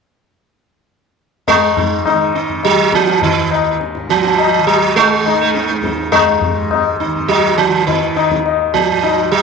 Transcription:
1.48 G#2 G#3, tabla na, tabla ge
1.77 D#4, tabla ge
2.06 D#4, tabla na, tabla ge
2.10 D#3
2.35 D#4, tabla te
2.49 tabla ge
2.63 F#3, tabla na
2.71 D#3
2.93 F3, tabla ke
3.07 tabla te
3.22 D#3, tabla tin, tabla ge
3.34 D#2
3.51 tabla na
3.81 tabla te
3.95 G#2, tabla te
4.10 F3, tabla ke
4.24 tabla te
4.39 tabla na
4.57 D#3
4.67 F#3, tabla na
4.96 G#3, tabla tin
5.20 D#3
5.26 D#4, tabla na
5.39 A3
5.50 G#3
5.55 D#4, tabla te
5.69 tabla te
5.80 D#2 D#4, tabla ke
5.98 tabla te
6.12 G#3, tabla na, tabla ge
6.41 G#2, tabla ge
6.71 tabla na, tabla ge
7.00 D#4, tabla te
7.05 D#3
7.15 tabla ge
7.28 F#3, tabla na
7.58 F3, tabla te
7.67 D#3
7.87 D#3, tabla tin, tabla ge
8.16 D#4, tabla na
8.29 D#2, tabla ke
8.46 tabla na
8.74 F3, tabla ke
8.90 G#2
9.03 D#4, tabla na
9.32 F#3, tabla na

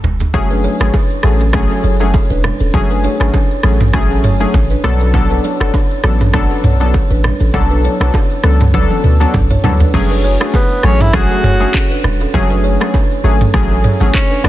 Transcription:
0.04 E1, floor tom, low conga, shaker
0.20 floor tom, high bongo, shaker
0.34 F#1 F#3 A3 C#4 G#4, kick, low conga, shaker
0.50 D4 B4, shaker
0.64 E4 C#5, low bongo, shaker
0.80 G#1 F#3 A3 C#4 G#4, cross-stick, low bongo, shaker
0.94 kick, high bongo, shaker
1.10 shaker
1.23 A1 F#3 A3 C#4 G#4 A4, cross-stick, shaker
1.40 high bongo, shaker
1.53 F#3 A3 C#4 G#4, kick, cross-stick, low bongo, low conga, shaker
1.70 C#4 A4, shaker
1.84 F#1 E4 C#5, shaker
2.00 F#3 A3 C#4 G#4, low bongo, shaker
2.14 kick, high bongo, shaker
2.30 E1 D4 B4, shaker
2.44 cross-stick, low conga, shaker
2.60 E1 C#4 A4, shaker
2.74 F#1 F#3 A3 C#4 G#4, kick, low conga, shaker
2.90 D4 B4, shaker
3.04 E4 C#5, low bongo, shaker
3.20 G#1 F#3 A3 C#4 G#4, cross-stick, low bongo, shaker
3.34 kick, high bongo, shaker
3.51 shaker
3.63 A1 F#3 A3 C#4 G#4 A4, cross-stick, shaker
3.80 mid tom, high bongo, shaker
3.94 F#3 A3 C#4 G#4, kick, cross-stick, low bongo, low conga, shaker
4.11 C#4 A4, shaker
4.24 F#1 E4 C#5, mid tom, shaker
4.40 F#3 A3 C#4 G#4, low bongo, shaker
4.54 A1, kick, high bongo, shaker
4.70 D4 B4, shaker
4.84 B1 F#3 B3 D4 A4, cross-stick, low conga, shaker
5.00 C#4 A4, shaker
5.14 F#3 B3 D4 A4, kick, low conga, shaker
5.30 D4 B4, shaker
5.44 E4 C#5, low bongo, shaker
5.60 F#1 F#3 B3 D4 A4, cross-stick, low bongo, shaker
5.74 kick, high bongo, shaker
5.91 shaker
6.04 A1 F#3 B3 C#4 D4 A4, cross-stick, shaker
6.21 mid tom, high bongo, shaker
6.34 F#3 B3 D4 A4, kick, cross-stick, low bongo, low conga, shaker
6.51 C#4 A4, shaker
6.64 B1 E4 C#5, mid tom, shaker
6.80 F#3 B3 D4 A4, low bongo, shaker
6.94 kick, high bongo, shaker
7.10 A1 D4 B4, shaker
7.24 cross-stick, low conga, shaker
7.40 A1 C#4 A4, shaker
7.54 B1 F#3 B3 D4 A4, kick, low conga, shaker
7.70 D4 B4, shaker
7.84 E4 C#5, low bongo, shaker
8.00 B1 F#3 B3 D4 A4, cross-stick, low bongo, shaker
8.14 kick, high bongo, shaker
8.31 shaker
8.44 C#2 F#3 B3 C#4 D4 A4, cross-stick, shaker
8.60 mid tom, high bongo, shaker
8.74 F#3 B3 D4 A4, kick, high tom, low bongo, low conga, shaker
8.90 C#4 A4, high tom, shaker
9.04 D2 D4 B4, mid tom, shaker
9.20 F#3 B3 D4 A4, low bongo, shaker
9.34 B1, kick, mid tom, high bongo, shaker
9.50 E4 C#5, mid tom, shaker
9.64 D2 F#3 B3 D4 A4, floor tom, low conga, shaker
9.80 D4 B4, floor tom, shaker
9.94 F#1 F#3 A3 C#4 G#4, kick, crash, low conga, shaker
10.10 D4 B4, shaker
10.24 E4 C#5, shaker
10.40 F#3 A3 C#4 G#4, cross-stick, low bongo, shaker
10.54 B3, kick, high bongo, shaker
10.70 shaker
10.83 A1 F#3 A3 C#4 G#4 A4, cross-stick, shaker
11.00 E4, mid tom, shaker
11.13 F#3 A3 C#4 F#4 G#4, kick, cross-stick, low bongo, low conga, shaker
11.31 C#4 A4, shaker
11.44 F#1 E4 C#5, mid tom, shaker
11.60 F#3 A3 C#4 G#4, low bongo, shaker
11.74 kick, clap, high bongo, shaker
11.90 D4 B4, shaker
12.04 E1, cross-stick, low conga, shaker
12.20 C#4 A4, high bongo, shaker
12.34 F#1 F#3 A3 C#4 G#4, kick, low conga, shaker
12.50 D4 B4, shaker
12.64 E4 C#5, shaker
12.80 F#3 A3 C#4 G#4, cross-stick, low bongo, shaker
12.94 kick, high bongo, shaker
13.11 shaker
13.24 G#1 F#3 A3 C#4 G#4 A4, shaker
13.41 mid tom, shaker
13.54 A1 F#3 A3 C#4 G#4, kick, cross-stick, low bongo, low conga, shaker
13.70 C#4 A4, shaker
13.84 E4 C#5, mid tom, shaker
14.00 G#1 F#3 A3 C#4 G#4, low bongo, shaker
14.14 C#4, kick, clap, high bongo, shaker
14.30 D4 B4, shaker
14.44 B1 D3 A3 B3 D4 F#4, cross-stick, low conga, shaker

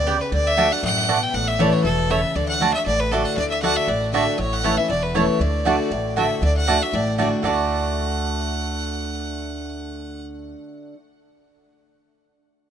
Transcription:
Already playing: D2 D5
0.06 C#3 B3 G4 D5 G5
0.21 B4
0.32 D2 D3 D5
0.47 E5
0.57 D3 A3 D4 F#4 D5 A5
0.71 D4 F#4 F#5
0.83 A1 F#2 F#5
1.08 B2 A3 F#4 D5 A5
1.23 G5
1.34 A1 A2 F#5
1.48 E5
1.59 E3 A3 C#4 E4 C#5 D5 A5
1.73 C#5
1.84 E1 B2 A4
2.10 C#3 A3 E4 C#5 E5 A5
2.35 D2 D3 D5
2.48 F#5
2.60 D3 A3 D4 F#4 D5 A5
2.73 D4 F#4 E5
2.86 A1 A2 D5
3.00 B4
3.11 D3 A3 D4 F#4 A4 D5 A5
3.25 F#5
3.37 D2 D3 D5
3.50 E5
3.62 D3 A3 D4 F#4 D5 F#5 A5
3.76 E5
3.88 A1 A2 D5
4.13 D3 A3 D4 F#4 D5 E5 A5
4.38 A1 A2 C#5
4.53 F#5
4.63 E3 A3 C#4 E4 C#5 A5
4.77 C#4 E4 E5
4.90 E1 E2 D5
5.03 B4
5.15 E3 A3 C#4 E4 C#5 A5
5.40 D2 D3 D5
5.65 D3 A3 D4 F#4 D5 A5
5.91 A1 A2
6.16 D3 A3 D4 F#4 D5 E5 A5
6.42 D2 D3 D5
6.57 F#5
6.67 D3 A3 D4 F#4 D5 A5
6.80 D4 F#4 E5
6.93 A1 A2 D5
7.18 D3 A3 D4 F#4 D5 A5
7.43 D2 D3 A3 D4 F#4 D5 F#5 A5
7.47 F#4

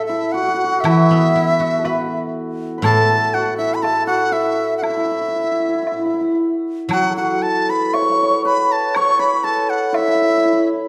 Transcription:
Already playing: A2 A3 A4
0.06 E4 E5
0.32 F#4 F#5
0.43 F#4
0.48 F#4
0.54 F#4
0.64 F#4
0.71 F#4
0.81 E3 E5
0.85 E4, high woodblock
1.11 B3
1.36 E4
1.60 F#4
1.78 A4
1.84 F#4 B4, low woodblock
2.78 B4
2.82 A2 A4 A5, high woodblock
3.34 F#4 F#5
3.58 E4 E5
3.75 B5
3.83 A4 A5, low woodblock
4.07 F#4 F#5
4.32 E4 E5
4.78 F#5
4.82 E4 E5, high woodblock
4.90 E4
4.97 E4
5.05 E4
5.11 E4
5.21 E4
5.28 E4
5.36 E4
5.44 E4
5.52 E4
5.60 E4
5.68 E4
5.75 E4
5.82 E4
5.87 low woodblock
5.92 E4
5.99 E4
6.05 E4
6.14 E4
6.21 E4
6.89 F#3 F#5, high woodblock
6.93 F#4
7.10 A4
7.17 F#4 F#5
7.42 A5
7.69 B4 B5
7.94 C#5 C#6, low woodblock
8.02 C#5
8.09 C#5
8.15 C#5
8.23 C#5
8.30 C#5
8.45 B4 B5
8.72 A5
8.95 C#5 C#6, high woodblock
9.19 B4 B5
9.44 A4 A5
9.70 F#5
9.93 E4 E5, low woodblock
9.98 E4
10.08 E4
10.15 E4
10.22 E4
10.30 E4
10.37 E4
10.45 E4
10.53 E4

